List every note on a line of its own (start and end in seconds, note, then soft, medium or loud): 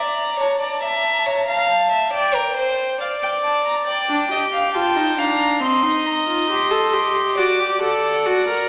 0.00 0.39 D5 medium
0.00 0.41 A#5 medium
0.39 0.60 C#5 medium
0.39 0.49 A5 medium
0.47 0.57 A#5 medium
0.55 0.65 A5 medium
0.60 0.82 D5 medium
0.60 0.73 A#5 medium
0.71 0.80 A5 medium
0.79 0.88 A#5 medium
0.83 1.28 E5 medium
0.83 0.97 A5 medium
0.95 1.05 A#5 medium
1.03 1.13 A5 medium
1.11 1.20 A#5 medium
1.18 1.27 A5 medium
1.26 1.47 C#5 medium
1.26 1.36 A#5 medium
1.35 1.44 A5 medium
1.43 1.52 A#5 medium
1.48 1.90 F5 medium
1.48 1.60 A5 medium
1.58 1.68 A#5 medium
1.66 2.12 A5 medium
1.91 2.12 E5 medium
2.13 2.36 D5 medium
2.13 2.98 G5 medium
2.35 2.56 A#4 medium
2.56 2.99 C5 medium
3.00 3.86 D5 loud
3.00 3.08 F5 medium
3.22 3.30 G5 medium
3.43 3.64 A5 medium
3.65 3.73 A#5 medium
3.87 4.29 D5 medium
3.87 4.72 G5 medium
4.09 4.29 D4 medium
4.31 4.76 G4 medium
4.31 4.39 D#5 medium
4.53 4.74 F5 medium
4.74 4.98 F4 loud
4.74 5.20 G5 medium
4.74 5.17 A5 medium
4.96 5.18 D#4 medium
5.17 5.62 D4 medium
5.17 5.61 F5 medium
5.17 5.60 A#5 medium
5.61 5.85 C4 medium
5.61 7.34 D#5 medium
5.61 6.07 C6 medium
5.83 6.27 D#4 medium
6.06 6.49 A#5 medium
6.27 6.49 F4 medium
6.50 6.72 G4 loud
6.50 7.36 C6 medium
6.71 6.95 A4 medium
6.93 7.39 G4 medium
7.37 7.61 F#4 loud
7.37 8.69 D5 medium
7.37 7.81 D6 medium
7.60 7.81 G4 medium
7.82 8.27 A4 medium
7.82 8.69 F#5 medium
8.26 8.47 F#4 loud
8.48 8.69 A#4 medium